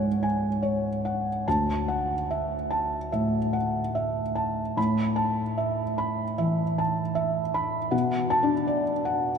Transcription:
Already playing: C#2 G#2 C#5 F#5 G#5
0.23 G#5
0.62 C#5
1.05 F#5
1.48 D2 A5
1.88 F#5
2.31 E5
2.71 A5
3.12 A2 E5
3.53 F#5
3.95 E5
4.35 A5
4.77 A2 B5
5.16 A5
5.58 E5
5.98 B5
6.38 E3 E5
6.78 A5
7.15 E5
7.54 B5
7.91 B2 F#5
8.30 A5
8.43 D4
8.67 D5
9.05 F#5

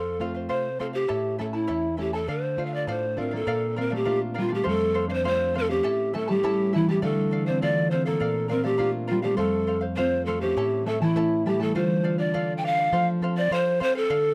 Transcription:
Already playing: F2 A4 C5 F5
0.20 A3 C4 F4 A4 C5 F5
0.35 C5 F5
0.49 C3 A4 C5 F5
0.79 A3 C4 F4 A4 C5 F5
0.93 G4 C5 F5
1.08 A2 E4 A4 C#5 E5 A5
1.38 A3 C#4 E4 A4 E5 A5
1.53 E4 A4 A5
1.67 E2 E4 A4 C#5 E5 A5
1.97 A3 C#4 E4 G4 A4 E5 A5
2.13 E4 A4 A5
2.27 D3 A4 C5 D5 F5
2.57 A3 D4 F4 A4 D5 F5
2.66 F5
2.73 D5 F5
2.87 A2 D4 A4 C5 D5 F5
3.17 A3 C4 D4 F4 A4 A#4 D5 F5
3.31 A#3 D5 F5
3.35 A4
3.47 A#2 A#4 D5 F5
3.76 C4 A#4 D5 F5
3.81 A#4
3.90 A3 D5 F5
3.96 G4
4.05 A#3 D4 F4 A#4 D5 F5
4.34 G3 A#4 D5 F5
4.39 F4
4.48 A3 D5 F5
4.54 G4
4.63 F2 A3 A4 C5 F5
4.68 A4
4.94 A4 C5 F5
5.07 C4 D4 C5 D5 F5
5.12 C5
5.24 A3 C4 F4 A4 C5 F5
5.54 A3 A4 C5 F5
5.69 C#4 G4 C5 F5
5.83 A2 E4 A4 C#5 E5 A5
6.13 A3 E4 A4 E5 A5
6.28 G3 E4 G4 A4 A5
6.43 A3 C#4 E4 A4 C#5 E5 A5
6.73 E3 E4 A4 E5 A5
6.89 G3 E4 G4 A4 A5
7.02 D3 A3 A4 D5 F5
7.31 A4 D5 F5
7.46 C4 C5 D5 F5
7.62 A3 D4 F4 A4 D5 F5
7.91 C4 A4 C5 D5 F5
8.05 A#3 A4 D5 F5
8.20 A#2 A#4 D5 F5
8.48 C4 A#4 D5 F5
8.64 A3 G4 D5 F5
8.78 A#3 D4 F4 A#4 D5 F5
9.07 G3 F4 A#4 D5 F5
9.22 A3 G4 D5 F5
9.37 F2 A3 A4 C5 F5
9.67 A4 C5 F5
9.81 C5 F5
9.96 A3 C4 F4 A4 C5 F5
10.26 A3 A4 C5 F5
10.41 C#4 G4 C5 F5
10.57 A2 E4 A4 C#5 E5 A5
10.86 A3 E4 A4 E5 A5
11.01 E3 E4 A4 A5
11.16 A3 C#4 E4 A4 C#5 E5 A5
11.46 G3 E4 G4 A4 E5 A5
11.60 A3 E4 A4 A5
11.75 D3 F4 A4 C5 D5 F5
12.03 A4 D5 F5
12.18 D4 D5 F5
12.34 A3 D4 F4 A4 D5 F5
12.57 G5
12.63 A4 D5 F5
12.78 D5 F5
12.93 F3 A4 C5 F5
13.22 C4 A4 C5 F5
13.37 C5 D5 F5
13.51 F3 A4 C5 F5
13.80 C4 A4 C5 F5
13.95 A4 C5 F5
14.10 D3 A4 D5 F5

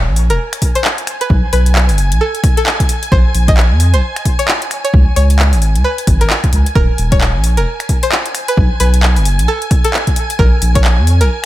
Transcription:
Already playing: G#5
0.07 A#1
0.16 open hi-hat
0.30 D#1 A#4, closed hi-hat
0.53 finger snap, closed hi-hat
0.62 kick, open hi-hat
0.75 C5, closed hi-hat
0.85 clap
0.98 closed hi-hat
1.07 finger snap, open hi-hat
1.21 B4, closed hi-hat
1.30 B1, kick
1.53 B1 B4, open hi-hat
1.66 closed hi-hat
1.75 clap
1.89 F#1, open hi-hat
1.98 open hi-hat
2.12 B1, closed hi-hat
2.21 A4
2.35 closed hi-hat
2.44 finger snap, kick, open hi-hat
2.57 A4, closed hi-hat
2.66 clap
2.80 kick, closed hi-hat
2.89 open hi-hat
3.03 closed hi-hat
3.12 A#1 C5, kick
3.35 A#1, open hi-hat
3.48 D#5, kick, closed hi-hat
3.57 clap
3.71 F2
3.80 open hi-hat
3.94 A#1 C5, closed hi-hat
4.16 finger snap, closed hi-hat
4.25 kick, open hi-hat
4.39 C#5, closed hi-hat
4.48 clap
4.62 closed hi-hat
4.71 finger snap, open hi-hat
4.84 C#5, closed hi-hat
4.94 C#2, kick
5.16 C#2 C#5, open hi-hat
5.30 closed hi-hat
5.39 clap
5.53 G#1, open hi-hat
5.62 open hi-hat
5.76 C#2, closed hi-hat
5.84 B4
5.98 closed hi-hat
6.07 G#1, finger snap, kick, open hi-hat
6.21 G#1 A#4, closed hi-hat
6.30 clap
6.44 finger snap, kick, closed hi-hat
6.53 C#2, open hi-hat
6.66 closed hi-hat
6.75 D#1 A#4 G#5, kick
6.98 D#1, open hi-hat
7.12 C#5, kick, closed hi-hat
7.21 clap
7.35 A#1
7.44 open hi-hat
7.57 D#1 A#4, closed hi-hat
7.80 finger snap, closed hi-hat
7.89 kick, open hi-hat
8.03 C5, closed hi-hat
8.12 clap
8.26 closed hi-hat
8.35 finger snap, open hi-hat
8.48 B4, closed hi-hat
8.57 B1, kick
8.80 B1 B4, open hi-hat
8.94 closed hi-hat
9.03 clap
9.16 F#1, open hi-hat
9.25 open hi-hat
9.39 B1, closed hi-hat
9.48 A4
9.62 closed hi-hat
9.71 finger snap, kick, open hi-hat
9.84 A4, closed hi-hat
9.94 clap
10.07 kick, closed hi-hat
10.16 open hi-hat
10.30 closed hi-hat
10.39 A#1 A#4, kick
10.62 A#1, open hi-hat
10.75 C#5, kick, closed hi-hat
10.84 clap
10.98 F2
11.07 open hi-hat
11.21 A#1 A#4, closed hi-hat

